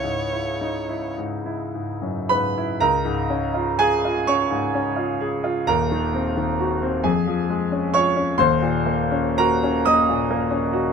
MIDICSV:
0, 0, Header, 1, 3, 480
1, 0, Start_track
1, 0, Key_signature, -5, "major"
1, 0, Tempo, 1138520
1, 731, Tempo, 1063830
1, 1210, Time_signature, 6, 3, 24, 8
1, 1211, Tempo, 988468
1, 1691, Tempo, 938967
1, 3131, Tempo, 891530
1, 4091, Tempo, 993377
1, 4571, Tempo, 924499
1, 5051, Tempo, 852273
1, 5402, End_track
2, 0, Start_track
2, 0, Title_t, "Violin"
2, 0, Program_c, 0, 40
2, 0, Note_on_c, 0, 73, 67
2, 482, Note_off_c, 0, 73, 0
2, 5402, End_track
3, 0, Start_track
3, 0, Title_t, "Grand piano"
3, 0, Program_c, 1, 0
3, 0, Control_c, 1, 64, 127
3, 0, Note_on_c, 1, 37, 48
3, 0, Note_on_c, 1, 64, 38
3, 13, Note_on_c, 1, 44, 37
3, 83, Note_off_c, 1, 64, 0
3, 137, Note_on_c, 1, 64, 39
3, 206, Note_off_c, 1, 44, 0
3, 258, Note_on_c, 1, 63, 38
3, 327, Note_off_c, 1, 64, 0
3, 375, Note_off_c, 1, 63, 0
3, 376, Note_on_c, 1, 64, 39
3, 496, Note_on_c, 1, 44, 36
3, 565, Note_off_c, 1, 64, 0
3, 615, Note_on_c, 1, 64, 36
3, 685, Note_off_c, 1, 44, 0
3, 736, Note_on_c, 1, 44, 34
3, 808, Note_off_c, 1, 64, 0
3, 859, Note_on_c, 1, 42, 37
3, 936, Note_off_c, 1, 44, 0
3, 984, Note_off_c, 1, 42, 0
3, 984, Note_on_c, 1, 83, 84
3, 987, Note_on_c, 1, 44, 36
3, 987, Note_on_c, 1, 71, 61
3, 1111, Note_on_c, 1, 64, 44
3, 1170, Note_off_c, 1, 44, 0
3, 1190, Note_off_c, 1, 37, 0
3, 1196, Note_off_c, 1, 71, 0
3, 1210, Note_off_c, 1, 83, 0
3, 1214, Note_off_c, 1, 64, 0
3, 1214, Note_on_c, 1, 82, 92
3, 1217, Note_on_c, 1, 37, 60
3, 1218, Control_c, 1, 64, 0
3, 1220, Note_on_c, 1, 70, 61
3, 1296, Control_c, 1, 64, 127
3, 1334, Note_on_c, 1, 44, 55
3, 1453, Note_on_c, 1, 61, 53
3, 1521, Note_off_c, 1, 44, 0
3, 1572, Note_on_c, 1, 65, 51
3, 1645, Note_off_c, 1, 61, 0
3, 1675, Note_off_c, 1, 70, 0
3, 1692, Note_off_c, 1, 82, 0
3, 1692, Note_on_c, 1, 80, 105
3, 1696, Note_on_c, 1, 68, 78
3, 1771, Note_off_c, 1, 65, 0
3, 1825, Note_on_c, 1, 65, 56
3, 1926, Note_off_c, 1, 68, 0
3, 1940, Note_on_c, 1, 85, 94
3, 1941, Note_off_c, 1, 80, 0
3, 1944, Note_on_c, 1, 61, 47
3, 1944, Note_on_c, 1, 73, 75
3, 2014, Note_off_c, 1, 65, 0
3, 2057, Note_on_c, 1, 44, 48
3, 2129, Note_off_c, 1, 61, 0
3, 2180, Note_on_c, 1, 61, 55
3, 2243, Note_off_c, 1, 44, 0
3, 2292, Note_on_c, 1, 65, 52
3, 2365, Note_off_c, 1, 61, 0
3, 2417, Note_on_c, 1, 68, 60
3, 2484, Note_off_c, 1, 65, 0
3, 2536, Note_on_c, 1, 65, 64
3, 2608, Note_off_c, 1, 68, 0
3, 2636, Note_off_c, 1, 73, 0
3, 2638, Note_off_c, 1, 37, 0
3, 2654, Note_off_c, 1, 85, 0
3, 2654, Note_on_c, 1, 27, 62
3, 2655, Note_on_c, 1, 82, 95
3, 2656, Note_off_c, 1, 65, 0
3, 2659, Note_on_c, 1, 39, 66
3, 2663, Note_on_c, 1, 70, 71
3, 2664, Control_c, 1, 64, 0
3, 2753, Control_c, 1, 64, 127
3, 2778, Note_on_c, 1, 51, 55
3, 2894, Note_on_c, 1, 60, 48
3, 2968, Note_off_c, 1, 51, 0
3, 3010, Note_on_c, 1, 51, 54
3, 3083, Note_off_c, 1, 60, 0
3, 3125, Note_on_c, 1, 66, 53
3, 3202, Note_off_c, 1, 51, 0
3, 3249, Note_on_c, 1, 60, 53
3, 3321, Note_off_c, 1, 66, 0
3, 3350, Note_off_c, 1, 27, 0
3, 3353, Note_off_c, 1, 39, 0
3, 3355, Note_off_c, 1, 70, 0
3, 3364, Note_on_c, 1, 80, 72
3, 3366, Note_on_c, 1, 41, 66
3, 3366, Note_on_c, 1, 68, 58
3, 3371, Note_off_c, 1, 60, 0
3, 3372, Note_off_c, 1, 82, 0
3, 3379, Control_c, 1, 64, 0
3, 3470, Control_c, 1, 64, 127
3, 3491, Note_on_c, 1, 53, 53
3, 3610, Note_on_c, 1, 56, 53
3, 3681, Note_off_c, 1, 53, 0
3, 3731, Note_on_c, 1, 61, 51
3, 3800, Note_off_c, 1, 56, 0
3, 3823, Note_off_c, 1, 68, 0
3, 3843, Note_off_c, 1, 80, 0
3, 3849, Note_on_c, 1, 85, 96
3, 3852, Note_on_c, 1, 65, 54
3, 3853, Note_on_c, 1, 73, 81
3, 3920, Note_off_c, 1, 61, 0
3, 3970, Note_on_c, 1, 61, 61
3, 4043, Note_off_c, 1, 65, 0
3, 4066, Note_off_c, 1, 41, 0
3, 4076, Note_off_c, 1, 73, 0
3, 4085, Note_on_c, 1, 27, 64
3, 4087, Note_on_c, 1, 84, 92
3, 4091, Note_off_c, 1, 61, 0
3, 4091, Note_off_c, 1, 85, 0
3, 4091, Note_on_c, 1, 39, 71
3, 4094, Note_on_c, 1, 72, 77
3, 4097, Control_c, 1, 64, 0
3, 4193, Control_c, 1, 64, 127
3, 4205, Note_on_c, 1, 46, 56
3, 4321, Note_on_c, 1, 58, 52
3, 4397, Note_off_c, 1, 46, 0
3, 4442, Note_on_c, 1, 61, 56
3, 4519, Note_off_c, 1, 58, 0
3, 4552, Note_off_c, 1, 72, 0
3, 4568, Note_off_c, 1, 84, 0
3, 4570, Note_on_c, 1, 82, 107
3, 4573, Note_on_c, 1, 66, 58
3, 4576, Note_on_c, 1, 70, 72
3, 4646, Note_off_c, 1, 61, 0
3, 4702, Note_on_c, 1, 61, 56
3, 4775, Note_off_c, 1, 66, 0
3, 4807, Note_off_c, 1, 70, 0
3, 4818, Note_on_c, 1, 87, 101
3, 4821, Note_off_c, 1, 82, 0
3, 4823, Note_on_c, 1, 58, 54
3, 4824, Note_on_c, 1, 75, 75
3, 4893, Note_off_c, 1, 61, 0
3, 4939, Note_on_c, 1, 46, 53
3, 5007, Note_off_c, 1, 58, 0
3, 5052, Note_on_c, 1, 58, 53
3, 5123, Note_off_c, 1, 46, 0
3, 5165, Note_on_c, 1, 61, 56
3, 5243, Note_off_c, 1, 58, 0
3, 5290, Note_on_c, 1, 66, 58
3, 5360, Note_off_c, 1, 61, 0
3, 5402, Note_off_c, 1, 27, 0
3, 5402, Note_off_c, 1, 39, 0
3, 5402, Note_off_c, 1, 66, 0
3, 5402, Note_off_c, 1, 75, 0
3, 5402, Note_off_c, 1, 87, 0
3, 5402, End_track
0, 0, End_of_file